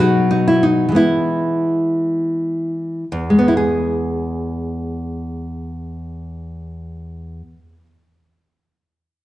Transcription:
Already playing: B2 F#3 D#4
0.00 F#4
0.31 D#4
0.48 E4
0.63 D#4
0.89 E3 G#3
0.95 B3 E4
3.12 E2
3.30 G#3
3.38 B3
3.48 E4
3.57 G#4

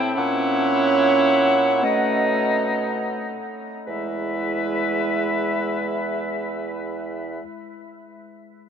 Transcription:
Already playing: A2 C4 E4 C5 G5
0.15 A#2 C#4 E4 C#5 F#5
1.83 B2 A3 D#4 D#5
3.86 E2 G#3 E4 B4 E5

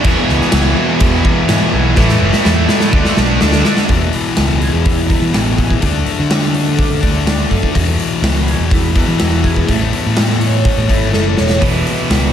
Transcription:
0.01 E2 B2 E3 E4 G#5, kick, crash
0.05 E3 G#4 B4
0.29 C#2, snare
0.41 snare
0.50 C#2 E2 B2 E3, snare, crash
0.75 E2 B2 E3
1.00 E2 B2 E3, kick, crash
1.25 kick
1.47 E2 G#2 B2 E3, snare, crash
1.71 B1 E2 B2 E3
1.95 A1 A2 E3 A3 C#5 A5, kick, snare
2.09 snare
2.21 F#1
2.33 snare
2.44 E2 A2 E3 A3, snare
2.68 A2 E3 A3, snare
2.80 snare
2.92 D2 D3 A3 D4 F#4, kick
2.96 D5
3.05 snare
3.17 B1, snare
3.41 D2 D3 A3 D4, snare
3.52 snare
3.64 D3 A3 D4, snare
3.77 snare
3.87 E2 B2 E3, kick, open hi-hat
4.13 E3, open hi-hat
4.37 C#2 B3, snare, open hi-hat
4.61 G#4, open hi-hat
4.74 E2
4.83 E4, kick, open hi-hat
5.07 B2 E3 B3, kick, open hi-hat
5.11 E2
5.22 E3
5.33 A1 E2 B2 E3 E4, snare, open hi-hat
5.57 G#4, kick, open hi-hat
5.70 kick
5.80 D2 D3 A3, kick, open hi-hat
5.84 D4
6.03 F#3, open hi-hat
6.20 D3
6.29 A3, snare, open hi-hat
6.42 snare
6.54 A4, open hi-hat
6.78 D4, kick, open hi-hat
6.90 D3
7.01 D2 D3 A3 D4, kick, open hi-hat
7.25 D3 A3 D4, snare, open hi-hat
7.50 F#2 A4, kick, open hi-hat
7.63 kick
7.73 E2 B2 E3, kick, open hi-hat
7.98 E3, open hi-hat
8.22 C#2 B3, snare, open hi-hat
8.35 snare
8.47 G#4, open hi-hat
8.59 E2
8.71 E4, kick, open hi-hat
8.94 E2 B2 E3 B3, kick, open hi-hat
9.08 E3
9.19 E2 B2 E3 E4, snare, open hi-hat
9.43 G#4, kick, open hi-hat
9.56 kick
9.67 A1 A2 E3 A3, kick, open hi-hat
9.92 B3, open hi-hat
10.06 A2
10.17 E4, snare, open hi-hat
10.29 snare
10.40 C#5, open hi-hat
10.64 A4, kick, open hi-hat
10.77 A2
10.88 G#1 A2 E3 A3 E4, kick, open hi-hat
11.10 F#1 A2 E3 A3 A4, snare
11.37 E1 C#5, snare
11.50 snare
11.59 E1 E2 B2 E3, kick, open hi-hat
11.85 E3, open hi-hat
12.09 C#2 B3, snare, open hi-hat

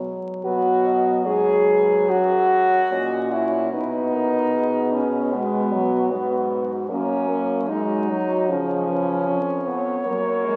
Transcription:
Already playing: F#3
0.44 B2 F#3 F#4 B4
0.87 D#5
1.26 G#2 G#4 C#5
1.69 B4
2.09 F#2 F#4 C#5
2.92 A#2 C#4 D#5
3.32 E4 C#5
3.72 B2 B3 D#4 B4
4.14 A#4
4.55 G#4
4.93 C#4
5.32 G#3 B3 F#4
5.72 F#3
6.11 G#2 B3
6.89 F#2 A#3 C#4 A#4
7.28 A#3
7.67 G#3 D#4 F#4
8.09 F#3
8.49 C#3 F3 C#4 G#4
8.89 B4
9.28 F2 C#5
9.67 B3
10.05 F#2 F#3 A#3
10.45 G#3

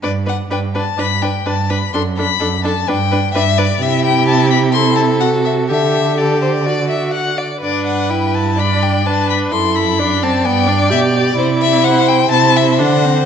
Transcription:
0.02 G2 D4 B4 D5
0.26 D4 B4 F#5
0.50 G2 D4 B4 G5
0.75 D4 B4 A5
0.98 G2 D4 B4 B5
1.22 D4 B4 G5
1.46 G2 D4 B4 A5
1.70 D4 B4 B5
1.93 F#2 D4 A4 C6
2.17 D4 A4 B5
2.40 F#2 D4 A4
2.64 D4 A4 A5
2.88 G2 D4 B4 G5
3.12 D4 B4
3.34 G2 D4 B4 E5
3.58 D4 B4 D5
3.81 C3 E4 G4 E5
4.05 G5
4.28 A5
4.50 B5
4.73 E4 A4 C6
4.97 A5
5.20 F#4 F#5
5.45 E5
5.68 D3 G4 A4 E5
6.16 G4 A4 D5
6.42 C5
6.66 F#4 D5
6.90 E5
7.14 F#5
7.38 D5
7.62 G2 D4 B4 D5
7.87 F#5
8.10 E4 G5
8.35 A5
8.58 D4 D5 B5
8.83 G5
9.06 D4 B4 A5
9.30 B5
9.52 F#2 E4 A4 C6
9.76 B5
9.99 D4 D5
10.23 C4 A5
10.45 G2 B3 G5
10.68 D4
10.90 B2 G4 E5
11.16 D5
11.37 C3 E4 C5
11.62 E5
11.84 C5 F#5
12.08 G5
12.30 C3 E4 C5 A5
12.56 E5
12.79 D3 D4 F#5
13.05 C4

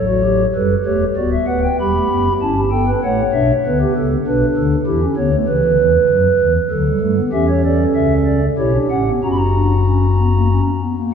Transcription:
Already playing: A1 A2 F#3 C#5
0.09 F#4
0.24 G4
0.55 F#1 F#2 G3 A4 B4
0.85 E1 E2 A3 G4 C#5
1.16 D1 D2 B3 F#4 D5
1.32 E5
1.47 D1 D2 B4 F#5
1.63 G5
1.79 E1 E2 G3 G4 B5
1.94 A3
2.10 F#1 F#2 B3
2.41 G1 G2 C#4 E4 A5
2.57 G4
2.71 B3 A4 G5
2.87 B4
3.03 A1 A2 A3 C#5 F#5
3.33 B1 B2 D4 E5
3.66 D2 D3 B3 B4
3.81 G4
3.96 C#2 C#3 A4
4.27 B1 B2 D4 B4
4.56 D2 D3 A4
4.86 E2 E3 E4 G4
5.02 C#4
5.16 D2 D3 B3 C#5
5.33 A3
5.48 C#2 C#3 E3 B4
5.64 D2 D3
5.78 E2 E3
6.09 F#2 F#3
6.39 E2 E3
6.70 D2 D3 F#3 A4
6.86 G3
7.00 G2 G3 A3
7.17 B3
7.32 E2 E3 C#4 G4 E5
7.48 C#5
7.65 A4 D5
7.95 C#2 C#3 E5
8.26 D5
8.58 B1 B2 E4 G4 C#5
8.75 D4
8.90 A1 A2 C#4 F#5
9.08 B3
9.23 F#1 F#2 C#4 F#4 A#5
9.32 B5
9.38 A#5
9.55 D4
9.87 C#4
10.19 B3
10.35 A#3
10.51 C#4
10.82 B3
10.98 A#3

